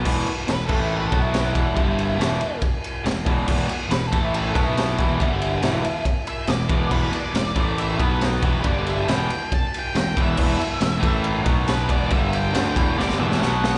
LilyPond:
<<
  \new Staff \with { instrumentName = "Lead electric guitar" } { \time 4/4 \key e \minor \tempo 4 = 139 r4 \tuplet 3/2 { b'8 a'8 e'8 b'8 a'8 e'8 } e'4~ | e'2 r2 | r4 \tuplet 3/2 { b'8 a'8 e'8 b'8 a'8 e'8 } e'4~ | e'2 r8 e''8 d''4 |
b'8 d''4. e''8 b'8 r8 b'8 | d''8 e''8 g''4 a''8 g''8 g''8 e''8 | e''2 r4 b'8 d''8 | e''8 g''4. d''8 e''8 fis''4 | }
  \new Staff \with { instrumentName = "Overdriven electric guitar" } { \clef bass \time 4/4 \key e \minor <e, b, e>8 r8 <e, b,>8 <a, e a>4 <b, fis b>4 <e, b, e>8 | <g, d g>4 <e, b, e>8 r4. <e, b,>8 <e, b, e>8 | <e, b, e>8 r8 <e, b,>8 <a, e a>4 <b, fis b>4 <e, b, e>8 | <g, d g>4 <e, b, e>8 r4. <e, b,>8 <e, b, e>8 |
<e, b, e>8 r8 <e, b,>8 <a, e a>4 <b, fis b>4 <e, b, e>8 | <g, d g>4 <e, b, e>8 r4. <e, b,>8 <e, b, e>8 | <e, b, e>8 r8 <e, b,>8 <a, e a>4 <b, fis b>4 <e, b, e>8 | <g, d g>4 <d a d'>8 <e, b, e>8 <g, d g>8 <e, b, e>8 <b, fis b>4 | }
  \new Staff \with { instrumentName = "Picked electric bass" } { \clef bass \time 4/4 \key e \minor e,,8 r8 e,,8 a,,4 b,,4 e,,8 | g,,4 e,,8 r4. e,,8 e,,8 | e,,8 r8 e,,8 a,,4 b,,4 e,,8 | g,,4 e,,8 r4. e,,8 e,,8 |
e,,8 r8 e,,8 a,,4 b,,4 e,,8 | g,,4 e,,8 r4. e,,8 e,,8 | e,,8 r8 e,,8 a,,4 b,,4 e,,8 | g,,4 d,8 e,,8 g,,8 e,,8 b,,4 | }
  \new DrumStaff \with { instrumentName = "Drums" } \drummode { \time 4/4 <cymc bd>8 cymr8 <cymr sn>8 <cymc bd>8 r8 <bd cymr>8 <cymr sn>8 <bd cymr>8 | <bd cymr>8 cymr8 <cymr sn>8 cymr8 <bd cymr>8 cymr8 <cymr sn>8 <bd cymr>8 | <cymc bd>8 cymr8 <cymr sn>8 <bd cymr>8 cymr8 <bd cymr>8 <cymr sn>8 <bd cymr>8 | <bd cymr>8 cymr8 <cymr sn>8 cymr8 <bd cymr>8 cymr8 <cymr sn>8 <bd cymr>8 |
<cymc bd>8 cymr8 <cymr sn>8 <bd cymr>8 cymr8 <bd cymr>8 <cymr sn>8 <bd cymr>8 | <bd cymr>8 cymr8 <cymr sn>8 cymr8 <bd cymr>8 cymr8 <cymr sn>8 <bd cymr>8 | <cymc bd>8 cymr8 <cymr sn>8 <bd cymr>8 cymr8 <bd cymr>8 <cymr sn>8 <bd cymr>8 | <bd cymr>8 cymr8 <cymr sn>8 <bd cymr>8 sn16 sn8 sn16 sn8 sn8 | }
>>